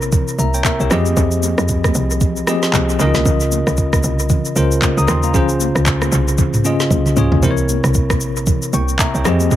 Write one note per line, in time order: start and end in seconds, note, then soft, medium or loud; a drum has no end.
0.00 0.24 A#1 loud
0.00 0.93 C3 medium
0.00 0.91 C4 medium
0.00 0.93 E4 medium
0.00 0.66 A#4 medium
0.00 0.55 C#5 loud
0.00 shaker medium
0.12 kick loud
0.12 low conga medium
0.12 shaker medium
0.28 shaker medium
0.39 0.62 C2 medium
0.39 0.54 E5 medium
0.39 0.53 A#5 medium
0.39 high conga medium
0.39 shaker medium
0.54 0.65 C#5 medium
0.54 0.64 G5 medium
0.54 shaker medium
0.65 0.80 A#4 medium
0.65 0.79 E5 medium
0.65 kick medium
0.65 clap medium
0.65 high conga medium
0.65 shaker medium
0.80 0.90 C2 medium
0.80 0.90 G4 medium
0.80 1.05 C#5 medium
0.80 shaker medium
0.90 1.15 F2 loud
0.90 1.75 F3 medium
0.90 1.75 C4 medium
0.90 1.75 G4 medium
0.90 1.76 G#4 medium
0.90 1.76 D#5 loud
0.90 cross-stick loud
0.90 high conga medium
0.90 low conga medium
0.90 shaker medium
1.06 high conga medium
1.06 shaker medium
1.17 1.55 F2 loud
1.17 kick loud
1.17 low conga medium
1.17 shaker medium
1.31 shaker medium
1.43 high conga medium
1.43 shaker loud
1.58 1.92 F2 loud
1.58 cross-stick medium
1.58 shaker medium
1.68 kick medium
1.68 shaker medium
1.84 kick loud
1.84 cross-stick loud
1.84 high conga medium
1.84 shaker medium
1.95 2.43 C2 loud
1.95 shaker medium
2.11 shaker medium
2.21 kick loud
2.21 low conga medium
2.21 shaker medium
2.36 shaker medium
2.47 2.90 F3 medium
2.47 2.91 C4 medium
2.47 2.91 G4 medium
2.47 2.91 G#4 medium
2.47 2.92 D#5 medium
2.47 cross-stick loud
2.47 high conga medium
2.47 shaker medium
2.63 snare medium
2.63 shaker medium
2.73 2.97 C2 loud
2.73 kick medium
2.73 clap medium
2.73 high conga medium
2.73 shaker medium
2.89 shaker medium
2.99 3.13 C#2 loud
2.99 3.84 C#3 medium
2.99 3.84 C#4 medium
2.99 3.07 D#4 medium
2.99 3.84 A#4 medium
2.99 3.85 D#5 loud
2.99 high conga medium
2.99 low conga medium
2.99 shaker medium
3.06 3.87 F4 medium
3.14 3.25 C2 medium
3.14 snare medium
3.14 high conga medium
3.14 shaker medium
3.25 3.63 C#2 loud
3.25 kick loud
3.25 low conga medium
3.25 shaker medium
3.40 shaker medium
3.52 high conga medium
3.52 shaker loud
3.67 4.01 C#2 loud
3.67 cross-stick medium
3.67 shaker medium
3.77 kick medium
3.77 shaker medium
3.93 kick loud
3.93 cross-stick loud
3.93 high conga medium
3.93 shaker medium
4.03 4.42 C2 loud
4.03 shaker medium
4.19 shaker medium
4.29 kick loud
4.29 low conga medium
4.29 shaker medium
4.45 shaker medium
4.55 4.80 C#2 medium
4.55 4.99 C#3 medium
4.55 4.99 C#4 medium
4.55 5.00 F4 medium
4.55 5.00 A#4 medium
4.55 5.00 C5 medium
4.55 high conga medium
4.55 shaker medium
4.72 shaker medium
4.82 kick medium
4.82 clap medium
4.82 high conga medium
4.82 shaker medium
4.97 5.07 C#2 loud
4.97 5.08 A#5 medium
4.97 5.08 D#6 medium
4.97 shaker medium
5.08 5.36 D#2 medium
5.08 5.23 G5 medium
5.08 5.23 C6 medium
5.08 cross-stick loud
5.08 high conga medium
5.08 low conga medium
5.08 shaker medium
5.23 5.49 F5 medium
5.23 5.48 A#5 medium
5.23 high conga medium
5.23 shaker medium
5.33 5.72 C#2 loud
5.33 6.18 C#3 medium
5.33 6.18 C#4 medium
5.33 6.19 F4 medium
5.33 6.19 G#4 medium
5.33 6.19 C5 loud
5.33 kick loud
5.33 low conga medium
5.33 shaker medium
5.49 shaker medium
5.60 high conga medium
5.60 shaker loud
5.75 6.09 C#2 loud
5.75 cross-stick medium
5.75 shaker medium
5.86 kick medium
5.86 clap medium
5.86 shaker medium
6.02 cross-stick loud
6.02 high conga medium
6.02 shaker medium
6.12 6.61 C2 medium
6.12 high conga soft
6.12 shaker medium
6.28 shaker medium
6.38 kick loud
6.38 low conga medium
6.38 shaker medium
6.54 mid tom loud
6.54 shaker medium
6.64 7.08 C#3 medium
6.64 7.08 C#4 medium
6.64 7.08 F4 medium
6.64 7.09 G#4 medium
6.64 7.09 D#5 medium
6.64 high conga medium
6.64 shaker medium
6.80 snare medium
6.80 shaker medium
6.90 7.15 C2 medium
6.90 kick medium
6.90 high tom medium
6.90 high conga medium
6.90 shaker medium
7.06 mid tom medium
7.06 shaker medium
7.16 7.31 C#2 loud
7.16 7.38 C#3 medium
7.16 7.38 C#4 medium
7.16 7.39 F4 medium
7.16 7.39 G#4 medium
7.16 7.39 C#5 loud
7.16 mid tom loud
7.16 high conga medium
7.16 low conga medium
7.16 shaker medium
7.32 7.42 C2 medium
7.32 floor tom loud
7.32 high conga medium
7.42 7.81 C2 loud
7.42 8.27 C3 medium
7.42 8.27 C4 medium
7.42 8.27 E4 medium
7.42 8.28 A#4 medium
7.42 7.51 C5 medium
7.42 kick loud
7.42 low conga medium
7.42 shaker medium
7.51 8.31 C#5 loud
7.57 shaker medium
7.69 high conga medium
7.69 shaker loud
7.84 8.23 C2 loud
7.84 cross-stick medium
7.84 shaker medium
7.94 kick medium
7.94 shaker medium
8.10 kick loud
8.10 cross-stick loud
8.10 high conga medium
8.10 shaker medium
8.20 8.59 A#1 loud
8.20 shaker medium
8.37 shaker medium
8.47 kick loud
8.47 low conga medium
8.47 shaker medium
8.62 shaker medium
8.73 8.97 C2 medium
8.73 8.99 G5 medium
8.73 8.98 C#6 medium
8.73 high conga medium
8.73 shaker medium
8.89 shaker medium
8.99 9.14 E5 medium
8.99 9.14 A#5 medium
8.99 kick medium
8.99 clap loud
8.99 high conga medium
8.99 shaker medium
9.14 9.25 C2 medium
9.14 9.40 C#5 medium
9.14 9.39 G5 medium
9.14 shaker medium
9.25 9.49 F2 loud
9.25 9.56 F3 medium
9.25 9.56 C4 medium
9.25 9.56 G4 medium
9.25 9.56 G#4 medium
9.25 9.56 D#5 loud
9.25 cross-stick loud
9.25 high conga medium
9.25 low conga medium
9.25 shaker medium
9.40 high conga medium
9.40 shaker medium
9.51 kick loud
9.51 low conga medium
9.51 shaker medium